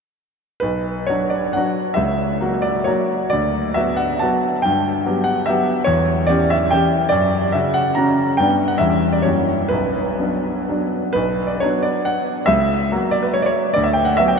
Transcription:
0.60 1.07 B1 soft
0.60 1.08 B4 medium
1.07 1.51 F#3 soft
1.07 1.51 D4 soft
1.07 1.51 F#4 soft
1.07 1.31 C#5 medium
1.30 1.53 D5 medium
1.53 1.94 F#3 soft
1.53 1.94 D4 soft
1.53 1.94 F#4 soft
1.53 1.97 F#5 medium
1.94 2.40 C#2 soft
1.94 2.64 E5 medium
2.40 2.84 F#3 soft
2.40 2.84 A#3 soft
2.40 2.85 F#4 soft
2.62 2.87 D5 medium
2.84 3.27 F#3 soft
2.84 3.28 A#3 soft
2.84 3.28 F#4 soft
2.84 3.31 C#5 medium
3.30 3.76 D2 medium
3.30 3.75 D5 medium
3.74 4.16 F#3 soft
3.74 4.17 B3 soft
3.74 4.17 F#4 soft
3.74 3.98 E5 medium
3.97 4.20 F#5 medium
4.19 4.60 F#3 soft
4.19 4.60 B3 soft
4.19 4.60 F#4 soft
4.19 4.62 A5 medium
4.62 5.05 G2 medium
4.62 5.27 G5 medium
5.06 5.44 F#3 soft
5.06 5.44 B3 soft
5.06 5.45 G4 soft
5.24 5.46 F#5 medium
5.46 5.84 F#3 soft
5.46 5.84 B3 soft
5.46 5.84 G4 soft
5.46 5.86 E5 medium
5.84 6.28 E2 medium
5.84 6.28 C#5 medium
6.27 6.69 E3 soft
6.27 6.69 C#4 soft
6.27 6.69 G4 soft
6.27 6.50 D5 medium
6.50 6.72 E5 medium
6.71 7.08 E3 soft
6.71 7.08 C#4 soft
6.71 7.09 G4 soft
6.71 7.11 G5 medium
7.09 7.53 F#2 medium
7.09 7.52 D5 medium
7.52 7.94 C#3 soft
7.52 7.94 C#4 soft
7.52 7.94 F#4 soft
7.52 7.75 E5 medium
7.74 7.96 F#5 medium
7.95 8.34 C#3 soft
7.95 8.34 C#4 soft
7.95 8.34 F#4 soft
7.95 8.37 A#5 medium
8.37 8.80 G2 medium
8.37 8.77 G3 soft
8.37 8.77 B3 soft
8.37 8.78 D4 soft
8.37 8.69 G5 medium
8.68 8.80 F#5 medium
8.78 9.24 E2 soft
8.78 9.22 G3 soft
8.78 9.22 C#4 soft
8.78 9.22 E4 soft
8.78 9.13 E5 medium
9.13 9.25 D5 medium
9.22 9.70 F#2 soft
9.22 9.67 F#3 soft
9.22 9.67 A#3 soft
9.22 9.68 E4 soft
9.22 9.70 C#5 medium
9.69 10.19 B1 soft
9.69 10.93 B4 medium
10.19 10.66 F#3 soft
10.19 10.66 B3 soft
10.19 10.66 D4 soft
10.69 11.12 F#3 soft
10.69 11.12 B3 soft
10.69 11.13 D4 soft
11.13 11.59 B1 medium
11.13 11.48 B4 medium
11.47 11.60 D5 medium
11.60 12.45 F#3 soft
11.60 12.45 B3 soft
11.60 12.46 D4 soft
11.60 11.84 C#5 medium
11.83 12.06 D5 medium
12.05 12.47 F#5 medium
12.46 12.89 C#2 medium
12.46 13.12 E5 medium
12.92 13.72 F#3 soft
12.92 13.72 A#3 soft
12.92 13.72 F#4 soft
13.11 13.23 D5 medium
13.23 13.34 B4 medium
13.34 13.41 C#5 medium
13.42 13.74 C#5 medium
13.42 13.48 D5 medium
13.74 14.16 D2 medium
13.74 13.84 D5 medium
13.84 13.95 E5 medium
13.93 14.05 G5 medium
14.05 14.16 F#5 medium
14.17 14.39 F#3 soft
14.17 14.39 B3 soft
14.17 14.39 F#4 soft
14.17 14.28 E5 medium
14.28 14.38 G5 medium

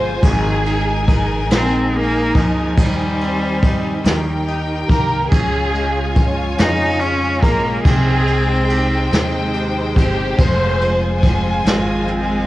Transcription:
0.00 0.20 G1 loud
0.00 0.24 F3 medium
0.00 0.31 C4 medium
0.00 0.19 F4 medium
0.00 0.32 F4 medium
0.00 1.08 G#4 medium
0.00 0.19 C5 loud
0.00 0.20 C5 medium
0.00 4.00 G#5 loud
0.21 1.49 G#1 loud
0.21 2.78 G#3 medium
0.21 3.99 D#4 loud
0.21 1.28 G#4 loud
0.21 2.74 A#4 medium
0.21 kick loud
0.21 ride medium
0.66 2.36 D#4 medium
0.66 ride soft
1.08 1.93 G#4 medium
1.08 kick medium
1.08 ride medium
1.49 2.30 A#1 loud
1.49 2.86 A#3 medium
1.49 snare loud
1.49 ride medium
1.55 1.97 C4 loud
1.93 2.39 A#3 loud
1.93 2.86 G#4 medium
1.93 ride soft
2.35 2.78 C#2 loud
2.35 2.78 F3 loud
2.35 3.22 D#4 medium
2.35 kick loud
2.35 ride medium
2.76 4.00 D#2 loud
2.76 4.04 D#3 loud
2.76 4.44 G3 loud
2.76 4.02 C5 medium
2.76 kick loud
2.76 ride medium
3.21 4.14 C4 medium
3.21 ride soft
3.63 4.14 D#4 medium
3.63 kick medium
3.63 ride medium
4.04 4.85 D#2 loud
4.04 5.32 D#3 medium
4.04 5.30 D#4 medium
4.04 5.30 G4 medium
4.04 5.30 A#4 medium
4.04 5.30 G5 medium
4.04 snare loud
4.04 ride medium
4.48 5.40 D#4 medium
4.48 ride soft
4.88 5.29 C2 medium
4.88 5.40 A#3 medium
4.88 5.28 A#4 loud
4.88 kick loud
4.88 ride medium
5.31 6.55 C#2 loud
5.31 7.84 C#3 medium
5.31 12.47 G#3 medium
5.31 7.83 F4 medium
5.31 6.37 G#4 loud
5.31 7.83 C#5 medium
5.31 7.83 G#5 loud
5.31 kick loud
5.31 ride medium
5.74 7.42 G#3 medium
5.74 ride soft
6.15 6.98 C#4 medium
6.15 kick medium
6.15 ride medium
6.57 7.39 F2 loud
6.57 7.93 F3 medium
6.57 7.02 D#4 loud
6.57 snare loud
6.57 ride medium
6.99 7.93 C#4 medium
6.99 7.44 C#4 loud
6.99 ride soft
7.42 7.82 A#1 medium
7.42 8.72 G#3 medium
7.42 7.85 A#3 loud
7.42 7.82 A#4 loud
7.42 kick loud
7.42 ride medium
7.83 9.08 C2 loud
7.83 10.39 C3 medium
7.83 9.54 C4 loud
7.83 10.37 D#4 medium
7.83 8.86 G#4 loud
7.83 12.47 C5 medium
7.83 10.37 G5 loud
7.83 kick loud
7.83 ride medium
8.26 9.96 C4 medium
8.26 ride soft
8.69 9.53 G4 medium
8.69 ride medium
9.11 9.92 D#2 loud
9.11 10.81 G#3 medium
9.11 snare loud
9.11 ride medium
9.54 10.47 G4 medium
9.54 ride soft
9.95 10.36 G1 loud
9.95 11.23 C4 medium
9.95 10.35 G4 loud
9.95 kick medium
9.95 ride medium
10.38 11.62 F1 loud
10.38 12.47 F2 loud
10.38 12.47 F4 medium
10.38 11.44 C5 loud
10.38 12.47 G#5 loud
10.38 kick loud
10.38 ride medium
10.81 12.47 G#3 medium
10.81 ride soft
11.23 12.05 C4 medium
11.23 kick medium
11.23 ride medium
11.65 12.46 G#1 loud
11.65 12.47 F3 medium
11.65 12.47 G#3 medium
11.65 snare loud
11.65 ride medium
12.07 12.47 C4 medium
12.07 ride soft

